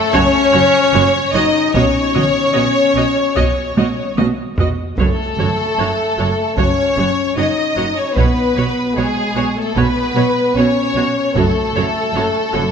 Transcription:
Already playing: violin section A4
0.12 double bass section F#1, cello section F#2, french horn section C#4, viola section F#4 C#5, violin section C#5, taiko
0.53 double bass section F#1, cello section F#2, viola section F#4 C#5
0.92 double bass section F#1, cello section F#2, viola section F#4 C#5
1.33 double bass section F#1, cello section F#2, french horn section D#4, viola section F#4 C#5, violin section D#5
1.73 double bass section B1, cello section B2, french horn section C#4, viola section F#4 D#5, violin section C#5, taiko
2.14 double bass section B1, cello section B2, viola section F#4 D#5, taiko mid
2.53 double bass section B1, cello section B2, viola section F#4 D#5
2.95 double bass section B1, cello section B2, viola section F#4 D#5
3.35 double bass section B1, cello section B2, viola section F#4 D#5, taiko
3.76 double bass section B1, cello section B2, viola section F#4 D#5, taiko high
4.16 double bass section B1, cello section B2, viola section F#4 D#5, taiko high
4.58 double bass section B1, cello section B2, viola section F#4 D#5, taiko low
4.96 double bass section F#1, cello section F#2, french horn section A3, viola section F#4 C#5, violin section A4, taiko
5.38 double bass section F#1, cello section F#2, viola section F#4 C#5, taiko mid
5.78 double bass section F#1, cello section F#2, viola section F#4 C#5
6.18 double bass section F#1, cello section F#2, viola section F#4 C#5
6.57 double bass section F#1, cello section F#2, french horn section C#4, viola section F#4 C#5, violin section C#5, taiko
6.97 double bass section F#1, cello section F#2, viola section F#4 C#5
7.37 double bass section F#1, cello section F#2, french horn section D#4, viola section F#4 C#5, violin section D#5
7.76 double bass section F#1, cello section F#2, viola section F#4 C#5
7.95 french horn section C#4, violin section C#5
8.13 double bass section B1, french horn section B3, viola section F#4 C#5, violin section B4, taiko
8.17 cello section B2, violin section B4
8.56 double bass section B1, cello section B2, viola section F#4 C#5
8.95 double bass section B1, cello section B2, french horn section G#3, viola section F#4 C#5, violin section G#4
8.99 violin section G#4
9.35 double bass section B1, cello section B2, viola section F#4 C#5
9.57 french horn section A3, violin section A4
9.74 double bass section B1, cello section B2, french horn section B3, viola section F#4 C#5, violin section B4, taiko
10.14 double bass section B1, cello section B2, viola section F#4 C#5
10.55 double bass section B1, cello section B2, french horn section C#4, viola section F#4 C#5, violin section C#5
10.95 double bass section B1, cello section B2, viola section F#4 C#5
11.34 double bass section F#1, cello section F#2, french horn section A3, viola section F#4 C#5, violin section A4, taiko
11.74 double bass section F#1, cello section F#2, viola section F#4 C#5
12.14 double bass section F#1, cello section F#2, viola section F#4 C#5
12.53 double bass section F#1, cello section F#2, viola section F#4 C#5

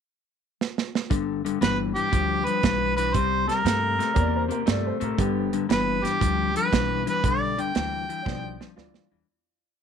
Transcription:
0.61 snare
0.78 snare
0.95 snare
1.10 upright bass G1, clean electric guitar G2 D3, kick, closed hi-hat
1.45 clean electric guitar G2 D3, closed hi-hat
1.61 upright bass G1, clean electric guitar G2 E3, harmonica B4, snare, closed hi-hat
1.95 clean electric guitar G2 E3, harmonica G4, closed hi-hat
2.12 upright bass D2, clean electric guitar G2 F3, kick, closed hi-hat
2.45 clean electric guitar G2 F3, harmonica B4, closed hi-hat
2.63 upright bass B1, clean electric guitar G2 E3, kick, snare, closed hi-hat
2.96 clean electric guitar G2 E3, harmonica B4, closed hi-hat
3.14 upright bass C2, clean electric guitar C3 G3, harmonica C5, kick, closed hi-hat
3.48 clean electric guitar C3 G3, harmonica A#4, snare, closed hi-hat
3.65 upright bass G2, clean electric guitar C3 A3, snare, closed hi-hat
3.99 clean electric guitar C3 A3, snare, closed hi-hat
4.14 upright bass E2, clean electric guitar C3 A#3, upright piano C#5, kick, closed hi-hat
4.20 upright piano D5
4.36 upright piano C5
4.48 clean electric guitar C3 A#3, upright piano A#4, closed hi-hat
4.66 upright bass G2, clean electric guitar C3 A3, upright piano D5, snare, closed hi-hat
4.87 upright piano C5
5.00 upright bass A2, clean electric guitar C3 A3, upright piano A#4, closed hi-hat
5.17 upright bass G1, clean electric guitar G2 D3, upright piano B3 G4, kick, closed hi-hat
5.53 clean electric guitar G2 D3, closed hi-hat
5.69 upright bass G1, clean electric guitar G2 E3, harmonica B4, snare, closed hi-hat
6.03 clean electric guitar G2 E3, harmonica G4, snare, closed hi-hat
6.20 upright bass D2, clean electric guitar G2 F3, kick, closed hi-hat
6.54 clean electric guitar G2 F3, harmonica B4, closed hi-hat
6.72 upright bass B1, clean electric guitar G2 E3, kick, snare, closed hi-hat
7.06 clean electric guitar G2 E3, harmonica B4, closed hi-hat
7.24 upright bass B1, clean electric guitar G2 D3, kick, closed hi-hat
7.28 harmonica D5
7.58 clean electric guitar G2 D3, harmonica G5, closed hi-hat
7.75 upright bass D2, clean electric guitar G2 E3, snare, closed hi-hat
8.09 clean electric guitar G2 E3, closed hi-hat
8.22 upright bass B1, clean electric guitar G2 F3, upright piano C#5, kick
8.27 upright piano D5, snare
8.60 clean electric guitar G2 F3, snare
8.76 upright bass D2, clean electric guitar G2 E3, upright piano F4 D5, snare
8.94 snare
9.11 upright bass E2, clean electric guitar G2 E3

